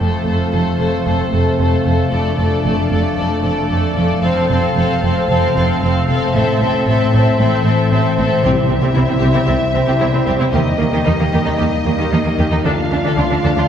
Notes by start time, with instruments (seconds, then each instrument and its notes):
0.00 harp F2, viola section A3, french horn section A3 C4, violin section A4 C5
0.18 harp C4
0.26 double bass section F1, cello section F2, viola section A3, violin section A4 C5
0.36 harp F4
0.52 double bass section F1, cello section F2, viola section A3, violin section A4 C5, harp C5
0.71 harp F5
0.78 double bass section F1, cello section F2, viola section A3, violin section A4 C5
0.88 harp C5
1.04 double bass section F1, cello section F2, harp C3, viola section A3, violin section A4 C5
1.23 harp C4
1.31 double bass section F1, cello section F2, viola section A3, violin section A4 C5
1.42 harp F4
1.58 double bass section F1, cello section F2, viola section A3, violin section A4 C5, harp C5
1.76 harp F5
1.84 double bass section F1, cello section F2, viola section A3, violin section A4 C5
1.94 harp C5
2.10 double bass section F1, cello section F2, harp F2, viola section A3, french horn section D4, violin section A4 D5
2.29 harp D4
2.37 double bass section F1, cello section F2, viola section A3, violin section A4 D5
2.46 harp F4
2.63 double bass section F1, cello section F2, viola section A3, violin section A4 D5, harp D5
2.82 harp F5
2.90 double bass section F1, cello section F2, viola section A3, violin section A4 D5
3.00 harp D5
3.16 double bass section F1, cello section F2, harp F2, viola section A3, violin section A4 D5
3.35 harp D4
3.42 double bass section F1, cello section F2, viola section A3, violin section A4 D5
3.52 harp F4
3.69 double bass section F1, cello section F2, viola section A3, violin section A4 D5, harp D5
3.88 harp F5
3.96 double bass section F1, cello section F2, viola section A3, violin section A4 D5
4.06 harp D5
4.23 double bass section F1, cello section F2, harp F2, french horn section A3 C4, viola section C4, violin section A4 F5
4.42 harp C4
4.49 double bass section F1, cello section F2, viola section C4, violin section A4 F5
4.59 harp F4
4.75 double bass section F1, cello section F2, viola section C4, violin section A4 F5, harp C5
4.93 harp F5
5.01 double bass section F1, cello section F2, viola section C4, violin section A4 F5
5.11 harp C5
5.28 double bass section F1, cello section F2, harp C3, viola section C4, violin section A4 F5
5.47 harp C4
5.55 double bass section F1, cello section F2, viola section C4, violin section A4 F5
5.65 harp F4
5.81 double bass section F1, cello section F2, viola section C4, violin section A4 F5, harp C5
6.00 harp F5
6.08 double bass section F1, cello section F2, viola section C4, violin section A4 F5
6.17 harp C5
6.34 double bass section A1, cello section A2, harp A2, viola section C4, violin section A4 E5
6.53 harp C4
6.60 double bass section A1, cello section A2, viola section C4, violin section A4 E5
6.70 harp E4
6.86 double bass section A1, cello section A2, viola section C4, violin section A4 E5, harp C5
7.05 harp E5
7.13 double bass section A1, cello section A2, viola section C4, violin section A4 E5
7.23 harp C5
7.39 double bass section A1, cello section A2, harp E3, viola section C4, violin section A4 E5
7.58 harp C4
7.63 double bass section A1, cello section A2, viola section C4, violin section A4 E5
7.75 harp E4
7.90 double bass section A1, cello section A2, viola section C4, violin section A4 E5, harp C5
8.10 harp E5
8.17 double bass section A1, cello section A2, viola section C4, violin section A4 E5
8.27 harp C5
8.43 double bass section C2, cello section C3, timpani C3, harp C3, french horn section G3 E4, viola section C4, violin section G4 E5
8.63 harp C4
8.68 double bass section C2, cello section C3, violin section C4, viola section C4
8.80 cello section C3, viola section C4, harp E4, violin section G4
8.94 double bass section C2, cello section C3, viola section C4, violin section E4, harp C5
9.07 cello section C3, violin section C4, viola section C4
9.15 harp E5
9.19 double bass section C2, cello section C3, viola section C4, violin section G4
9.32 cello section C3, viola section C4, violin section E4, harp C5
9.45 double bass section C2, cello section C3, viola section C4, violin section G4
9.50 harp G3
9.67 harp C4
9.73 double bass section C2, cello section C3, viola section C4, violin section C4
9.84 cello section C3, viola section C4, harp E4, violin section G4
10.00 double bass section C2, cello section C3, viola section C4, violin section E4, harp C5
10.12 cello section C3, viola section C4, violin section C4
10.18 harp E5
10.25 double bass section C2, cello section C3, viola section C4, violin section G4
10.36 viola section C4, harp C5
10.41 cello section C3, violin section E4
10.52 double bass section D#2, harp D#3, cello section D#3, viola section A#3, french horn section D#4, violin section G4 D#5
10.71 harp D#4
10.77 double bass section D#2, cello section D#3, viola section A#3, violin section A#3
10.89 cello section D#3, viola section A#3, harp G4, violin section G4
11.04 double bass section D#2, cello section D#3, viola section A#3, violin section D#4, harp D#5
11.18 cello section D#3, viola section A#3, violin section A#3
11.24 harp G5
11.32 double bass section D#2, cello section D#3, viola section A#3, violin section G4
11.41 cello section D#3, viola section A#3, harp D#5
11.46 violin section D#4
11.58 double bass section D#2, cello section D#3, harp A#3, viola section A#3, violin section G4
11.75 harp D#4
11.85 double bass section D#2, cello section D#3, violin section A#3, viola section A#3
11.93 harp G4
11.98 cello section D#3, viola section A#3, violin section G4
12.11 double bass section D#2, cello section D#3, viola section A#3, violin section D#4, harp D#5
12.24 cello section D#3, viola section A#3, violin section A#3
12.28 harp G5
12.38 double bass section D#2, cello section D#3, viola section A#3, violin section G4
12.46 harp D#5
12.51 cello section D#3, viola section A#3, violin section D#4
12.63 double bass section D2, harp D3, cello section D3, french horn section A3 F4, viola section D4, violin section A4 F5
12.81 harp D4
12.91 double bass section D2, cello section D3, viola section D4, violin section D4
12.99 harp F4
13.04 cello section D3, viola section D4, violin section A4
13.17 double bass section D2, cello section D3, viola section D4, violin section F4, harp D5
13.30 cello section D3, viola section D4, violin section D4
13.35 harp F5
13.44 double bass section D2, cello section D3, viola section D4, violin section A4
13.52 harp D5
13.57 cello section D3, viola section D4, violin section F4